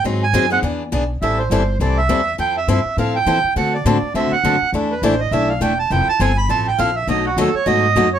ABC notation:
X:1
M:4/4
L:1/8
Q:"Swing" 1/4=204
K:E
V:1 name="Accordion"
z g2 f z4 | [K:Am] e c c2 d e3 | g e e2 f g3 | ^f d d2 e f3 |
z B c ^d e f g a | g a ^g b a =g f e | ^d ^F A ^c d3 c |]
V:2 name="Steel-string acoustic guitar"
[D,F,^B,DG] z [D,F,B,DG] [B,DG] [E,=B,=DG] z [E,B,DG] z | [K:Am] [E,G,CEA] z [E,G,CEA] z [E,G,CEA] z [E,G,CEA] z | [F,CEA] z [F,CEA] z [F,CEA] z [F,CEA] z | [D,A,C^FA] z [D,A,CFA] z [D,A,CFA] z [D,A,CFA] z |
[E,A,DEA] z [E,A,DEA] z [E,A,DEA] z [E,A,DEA] z | [F,CEA] z [F,CEA] z [F,CEA] z [F,CEA] z | [B,,^F,A,^D^F] z [B,,F,A,DF] z [B,,F,A,DF] z [B,,F,A,DF] z |]
V:3 name="Upright bass" clef=bass
G,,2 F,,2 E,,2 B,,,2 | [K:Am] A,,,2 G,,,2 C,,2 E,,2 | F,,2 G,, z A,,2 E, z | D,2 A,, z D,, z ^F,, z |
E,,2 A,,,2 B,,,2 E,,,2 | F,,, z G,,,2 A,,,2 _B,,,2 | B,,,2 ^D,, z ^G,,2 ^F,,2 |]